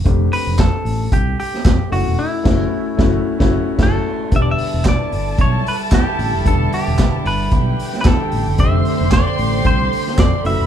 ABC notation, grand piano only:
X:1
M:4/4
L:1/16
Q:"Swing 16ths" 1/4=113
K:Em
V:1 name="Grand piano"
[A,CDG]12- [A,CDG]2 [A,^CEF]2 | z2 [A,^CEF]2 z2 [A,CEF]2 z [A,CEF]2 z [A,CEF]2 z2 | [G,B,DG]16 | [G,B,DG]16 |
[A,CDG]12- [A,CDG]2 [A,^CEF]2 |]